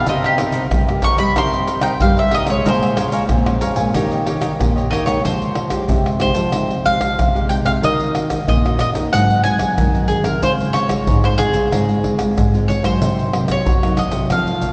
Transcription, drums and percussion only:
0.06 pandeiro, shaker, surdo
0.24 pandeiro, tamborim, shaker
0.38 pandeiro, tamborim, shaker
0.52 pandeiro, shaker
0.71 pandeiro, tamborim, shaker, surdo
0.89 pandeiro, tamborim, shaker
1.02 pandeiro, shaker, surdo
1.18 pandeiro, shaker
1.36 pandeiro, tamborim, shaker, surdo
1.53 pandeiro, shaker
1.67 pandeiro, shaker
1.81 pandeiro, tamborim, shaker
2.00 pandeiro, tamborim, shaker, surdo
2.17 pandeiro, shaker
2.31 pandeiro, tamborim
2.47 pandeiro, tamborim, shaker
2.66 pandeiro, shaker, surdo
2.83 pandeiro, tamborim, shaker
2.97 pandeiro, tamborim, shaker
3.12 pandeiro, shaker
3.29 pandeiro, tamborim, shaker, surdo
3.46 pandeiro, tamborim, shaker
3.61 pandeiro, shaker
3.76 pandeiro, shaker
3.94 pandeiro, tamborim, shaker, surdo
4.11 pandeiro, shaker
4.27 pandeiro
4.42 pandeiro, tamborim, shaker
4.61 pandeiro, tamborim, shaker, surdo
4.78 pandeiro, shaker
4.93 pandeiro, tamborim, shaker
5.07 pandeiro, tamborim, shaker
5.25 pandeiro, shaker, surdo
5.42 pandeiro, shaker
5.55 pandeiro, tamborim
5.70 pandeiro, tamborim, shaker, surdo
5.89 pandeiro, shaker, surdo
6.06 pandeiro, tamborim, shaker
6.20 pandeiro, tamborim, shaker
6.35 pandeiro, shaker, surdo
6.52 pandeiro, tamborim, shaker, surdo
6.70 pandeiro, shaker
6.85 pandeiro, shaker, surdo
7.01 pandeiro, tamborim, shaker, surdo
7.19 pandeiro, tamborim, shaker, surdo
7.36 pandeiro, shaker
7.51 pandeiro, shaker
7.66 pandeiro, tamborim, shaker, surdo
7.83 pandeiro, shaker, surdo
8.00 pandeiro, shaker
8.15 pandeiro, tamborim
8.30 pandeiro, tamborim, shaker, surdo
8.48 pandeiro, shaker, surdo
8.66 pandeiro, tamborim, shaker
8.79 pandeiro, tamborim, shaker
8.95 pandeiro, shaker, surdo
9.14 pandeiro, tamborim, shaker, surdo
9.30 pandeiro, shaker
9.45 pandeiro, shaker
9.59 pandeiro, tamborim, shaker, surdo
9.78 pandeiro, tamborim, shaker, surdo
9.94 pandeiro, shaker
10.10 pandeiro, shaker
10.24 pandeiro, tamborim, shaker, surdo
10.42 pandeiro, shaker, surdo
10.60 pandeiro, shaker
10.74 pandeiro, tamborim, shaker
10.89 pandeiro, tamborim, shaker, surdo
11.07 pandeiro, shaker, surdo
11.24 pandeiro, tamborim, shaker
11.39 pandeiro, tamborim, shaker
11.53 pandeiro, shaker, surdo
11.72 pandeiro, tamborim, shaker, surdo
11.89 pandeiro, shaker
12.04 pandeiro, surdo
12.19 pandeiro, tamborim, shaker, surdo
12.38 pandeiro, tamborim, shaker, surdo
12.54 pandeiro, shaker
12.70 pandeiro, shaker
12.84 pandeiro, tamborim, shaker, surdo
13.02 pandeiro, shaker, surdo
13.19 pandeiro, shaker
13.33 pandeiro, tamborim
13.48 pandeiro, tamborim, shaker, surdo
13.66 pandeiro, shaker, surdo
13.83 pandeiro, tamborim, shaker
13.97 pandeiro, tamborim, shaker
14.11 pandeiro, shaker, surdo
14.30 pandeiro, tamborim, shaker, surdo
14.47 pandeiro, shaker
14.62 pandeiro, shaker, surdo

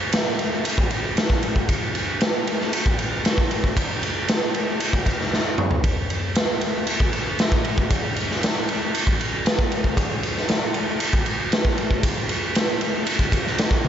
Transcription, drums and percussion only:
0.12 snare, ride
0.39 ride
0.65 ride
0.78 kick
0.91 ride
1.17 snare, ride
1.30 kick
1.43 ride
1.56 kick
1.69 kick, ride
1.95 ride
2.21 snare, ride
2.47 ride
2.61 snare
2.73 ride
2.86 kick
2.99 ride
3.25 snare, ride
3.38 kick
3.51 ride
3.64 kick
3.77 kick, ride
4.03 ride
4.28 snare, ride
4.54 ride
4.80 ride
4.93 kick
5.06 kick, ride
5.21 snare
5.33 snare
5.58 mid tom
5.71 floor tom
5.84 kick, ride
6.10 ride
6.35 snare, ride
6.61 ride
6.87 ride
7.00 kick
7.13 ride
7.39 snare, ride
7.52 kick
7.65 ride
7.78 kick
7.90 kick, ride
8.16 ride
8.31 snare
8.43 snare, ride
8.69 ride
8.95 ride
9.07 kick
9.21 ride
9.46 snare, ride
9.59 kick
9.72 ride
9.84 kick
9.97 kick, ride
10.23 ride
10.37 snare
10.49 snare, ride
10.74 ride
11.00 ride
11.13 kick
11.26 ride
11.52 snare, ride
11.65 kick
11.78 ride
11.91 kick
12.03 kick, ride
12.29 ride
12.55 snare, ride
12.81 ride
13.07 ride
13.19 kick
13.32 kick, ride
13.47 snare
13.58 snare, ride
13.71 kick
13.85 high tom

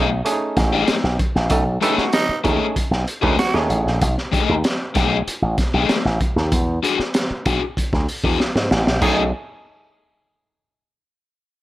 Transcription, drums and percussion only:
0.26 closed hi-hat
0.57 kick, snare, closed hi-hat
0.88 snare, closed hi-hat
1.04 snare
1.19 kick, closed hi-hat
1.36 snare
1.50 kick, closed hi-hat
1.82 closed hi-hat
1.98 snare
2.13 snare, closed hi-hat
2.45 kick, closed hi-hat
2.76 kick, closed hi-hat
2.92 snare
3.08 closed hi-hat
3.23 kick
3.39 snare, closed hi-hat
3.55 snare
3.70 closed hi-hat
3.87 snare
4.01 kick, closed hi-hat
4.18 snare
4.33 kick, closed hi-hat
4.64 snare, closed hi-hat
4.95 kick, snare, closed hi-hat
5.28 closed hi-hat
5.58 kick, snare, closed hi-hat
5.89 snare, closed hi-hat
6.06 snare
6.21 kick, closed hi-hat
6.37 snare
6.52 kick, closed hi-hat
6.84 closed hi-hat
6.99 snare
7.14 snare, closed hi-hat
7.46 kick, closed hi-hat
7.77 kick, closed hi-hat
7.93 kick, snare
8.08 open hi-hat
8.24 kick
8.40 snare
8.56 snare
8.71 snare
8.87 snare
9.02 kick, crash

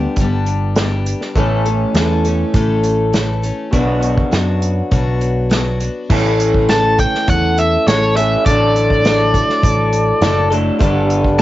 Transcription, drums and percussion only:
0.16 kick, closed hi-hat
0.46 closed hi-hat
0.76 snare, closed hi-hat
1.06 closed hi-hat
1.21 snare
1.36 kick, closed hi-hat
1.66 closed hi-hat
1.95 snare, closed hi-hat
2.25 closed hi-hat
2.54 kick, closed hi-hat
2.83 closed hi-hat
3.14 snare, closed hi-hat
3.43 closed hi-hat
3.73 kick, closed hi-hat
4.02 closed hi-hat
4.18 kick
4.32 snare, closed hi-hat
4.62 closed hi-hat
4.92 kick, closed hi-hat
5.21 closed hi-hat
5.51 snare, closed hi-hat
5.80 closed hi-hat
6.10 kick, crash
6.40 closed hi-hat
6.54 kick
6.69 snare, closed hi-hat
6.99 kick, closed hi-hat
7.15 snare
7.28 kick, closed hi-hat
7.58 closed hi-hat
7.88 snare, closed hi-hat
8.17 closed hi-hat
8.46 kick, closed hi-hat
8.76 closed hi-hat
8.90 kick
9.05 snare, closed hi-hat
9.34 kick, closed hi-hat
9.49 snare
9.63 kick, closed hi-hat
9.93 closed hi-hat
10.21 snare, closed hi-hat
10.52 closed hi-hat
10.81 kick, closed hi-hat
11.10 closed hi-hat
11.24 kick
11.39 closed hi-hat

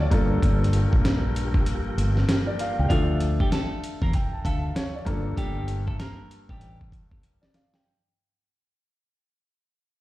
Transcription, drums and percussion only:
0.11 kick, closed hi-hat
0.42 kick, closed hi-hat
0.64 closed hi-hat
0.73 closed hi-hat
0.93 kick
1.05 snare, closed hi-hat
1.36 closed hi-hat
1.54 kick
1.66 closed hi-hat
1.98 closed hi-hat
2.17 snare
2.29 snare, closed hi-hat
2.59 closed hi-hat
2.90 kick, closed hi-hat
3.20 closed hi-hat
3.40 kick
3.52 snare, closed hi-hat
3.84 closed hi-hat
4.02 kick
4.13 kick, closed hi-hat
4.45 kick, closed hi-hat
4.76 snare, closed hi-hat
5.06 kick, closed hi-hat
5.37 kick, closed hi-hat
5.68 closed hi-hat
5.88 kick
6.00 snare, closed hi-hat
6.31 closed hi-hat
6.49 kick
6.61 closed hi-hat
6.81 kick
6.92 kick, closed hi-hat
7.12 kick
7.23 closed hi-hat
7.43 snare
7.54 snare, closed hi-hat
7.74 snare

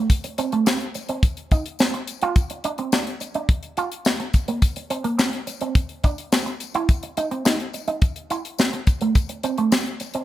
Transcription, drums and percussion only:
0.10 kick, closed hi-hat, tambourine
0.24 closed hi-hat
0.38 closed hi-hat, tambourine
0.52 closed hi-hat
0.66 snare, tambourine
0.80 closed hi-hat
0.94 closed hi-hat, tambourine
1.09 closed hi-hat
1.23 kick, closed hi-hat, tambourine
1.37 closed hi-hat
1.51 kick, closed hi-hat, tambourine
1.66 closed hi-hat
1.79 snare, tambourine
1.94 closed hi-hat
2.07 closed hi-hat, tambourine
2.21 closed hi-hat
2.36 kick, closed hi-hat, tambourine
2.50 closed hi-hat
2.64 closed hi-hat
2.78 closed hi-hat
2.92 snare, tambourine
3.07 closed hi-hat
3.20 closed hi-hat, tambourine
3.34 closed hi-hat
3.49 kick, closed hi-hat
3.63 closed hi-hat
3.77 closed hi-hat, tambourine
3.92 closed hi-hat
4.05 snare, tambourine
4.20 closed hi-hat
4.33 kick, closed hi-hat, tambourine
4.48 closed hi-hat
4.62 kick, closed hi-hat, tambourine
4.76 closed hi-hat
4.90 closed hi-hat
5.04 closed hi-hat
5.19 snare, tambourine
5.33 closed hi-hat
5.47 closed hi-hat, tambourine
5.61 closed hi-hat
5.75 kick, closed hi-hat, tambourine
5.89 closed hi-hat
6.04 kick, closed hi-hat, tambourine
6.18 closed hi-hat
6.32 snare, tambourine
6.46 closed hi-hat
6.60 closed hi-hat, tambourine
6.74 closed hi-hat
6.89 kick, closed hi-hat, tambourine
7.03 closed hi-hat
7.17 closed hi-hat, tambourine
7.31 closed hi-hat
7.45 snare, tambourine
7.60 closed hi-hat
7.73 closed hi-hat, tambourine
7.88 closed hi-hat
8.02 kick, closed hi-hat, tambourine
8.16 closed hi-hat
8.30 closed hi-hat, tambourine
8.45 closed hi-hat
8.58 snare, tambourine
8.73 closed hi-hat
8.87 kick, closed hi-hat, tambourine
9.01 closed hi-hat
9.15 kick, closed hi-hat, tambourine
9.29 closed hi-hat
9.43 closed hi-hat, tambourine
9.58 closed hi-hat
9.72 snare, tambourine
9.86 closed hi-hat
10.00 closed hi-hat, tambourine
10.14 closed hi-hat

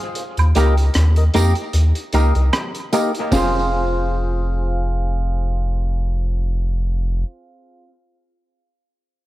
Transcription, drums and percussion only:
0.15 closed hi-hat
0.37 closed hi-hat, high woodblock
0.55 closed hi-hat, tambourine
0.77 closed hi-hat
0.94 cross-stick, closed hi-hat
1.16 closed hi-hat
1.34 closed hi-hat, tambourine
1.55 closed hi-hat
1.73 closed hi-hat
1.95 closed hi-hat
2.13 closed hi-hat, tambourine
2.35 closed hi-hat
2.53 cross-stick, closed hi-hat, high woodblock
2.75 closed hi-hat
2.93 closed hi-hat, tambourine
3.15 closed hi-hat
3.32 kick, snare, open hi-hat, tambourine

